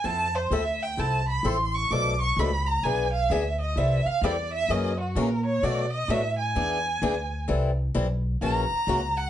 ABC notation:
X:1
M:4/4
L:1/8
Q:"Swing" 1/4=129
K:Flyd
V:1 name="Violin"
a c e g a b c' ^c' | d' ^c' b _b ^g f e ^d | e f d e ^d ^F ^A ^c | d ^d e ^g4- g |
z4 ^a3 ^f |]
V:2 name="Steel-string acoustic guitar"
[F,CEA] z [F,CEA] z [F,CEA] z [F,CEA] z | [B,,F,A,DA] z [B,,F,A,DA] z [E,B,D^G] z [E,B,DG] z | [E,G,CEA] z [E,G,CEA] z [^C,E,^A,^C^F] z [C,E,A,CF] z | [B,,^F,A,D^F] z [B,,F,A,DF] z [E,B,D^G] z [E,B,DG] z |
[E,G,CEA] z [E,G,CEA] z [^C,E,^A,^C^F] z [C,E,A,CF] z |]
V:3 name="Upright bass" clef=bass
F,,2 D,,2 C,,2 A,,,2 | B,,,2 ^C,,2 B,,,2 D,,2 | C,, z E,,2 ^F,,2 ^A,,2 | B,,2 A,,2 E,,2 D,,2 |
C,,2 B,,,2 ^A,,, z ^C,,2 |]